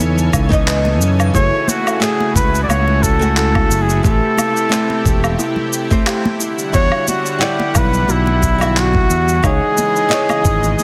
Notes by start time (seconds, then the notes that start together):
Already playing: C#3 E3 B3 A4 B4 C#5 G#5
0.00 E2 D#4, cabasa
0.18 low conga, cabasa
0.33 C#2, kick, cabasa, low woodblock
0.49 E3 B3 D#4, kick, cabasa
0.53 D#5
0.67 B4, clap, cabasa
0.85 muted conga, high conga
1.00 F#2, cabasa
1.20 cabasa, low woodblock
1.34 F#1 A3 E4 F#4 G#4 C#5 E5, kick, cabasa
1.68 F#4, high conga, cabasa
1.87 cabasa, low woodblock
2.00 A3 F#4 G#4 E5, clap, cabasa
2.20 muted conga
2.35 C#2 E4 B4, kick, cabasa
2.55 cabasa
2.63 D5
2.68 C#2 C#5, high conga, cabasa, low woodblock
2.87 muted conga, low conga
3.03 A4, kick, cabasa
3.19 A3 F#4 F#5 G#5, cabasa
3.36 E4 A4, clap, cabasa
3.55 kick, high conga, low woodblock
3.70 F#1, cabasa
3.82 G#4
3.89 cabasa
4.03 A1 C3 A3 C4 G4 A4 B4, kick, cabasa
4.38 E4, high conga, cabasa, low woodblock
4.57 cabasa
4.69 A3 C4 G4, clap, cabasa
4.73 B4
4.90 muted conga
5.05 E1, kick, cabasa
5.24 cabasa, low woodblock
5.39 E4, high conga, cabasa
5.56 low conga
5.73 cabasa
5.90 A3 C4 G4 C5, kick, cabasa
6.06 G4, clap, cabasa, low woodblock
6.25 muted conga, high conga
6.40 D3 G3 E4 F#5, cabasa
6.59 cabasa
6.72 E2 G3 D4 E4 F#4 C#5, kick, cabasa
6.92 low woodblock
7.08 F#4, high conga, cabasa
7.26 cabasa
7.39 G3 E4 G4 F#5, clap, cabasa
7.43 D5
7.60 muted conga
7.75 B1 B4, kick, cabasa, low woodblock
7.94 cabasa
8.08 B1 E4 F#4, high conga, cabasa
8.26 muted conga, low conga
8.42 E4, kick, cabasa
8.58 G3 E4 F#4, cabasa, low woodblock
8.63 E5
8.77 F#4, clap, cabasa
8.94 kick, high conga
9.10 E2, cabasa
9.28 cabasa
9.42 C#2 C#3 E3 G#3 B3 D#4 G#4 C#5 D#5, kick, cabasa, low woodblock
9.78 high conga, cabasa
9.96 cabasa
10.09 E3 B3 E4 D#5, clap, cabasa
10.13 C#5
10.29 muted conga, cabasa, low woodblock
10.45 G#1 D#4, kick, cabasa
10.63 muted conga, cabasa
10.78 high conga, cabasa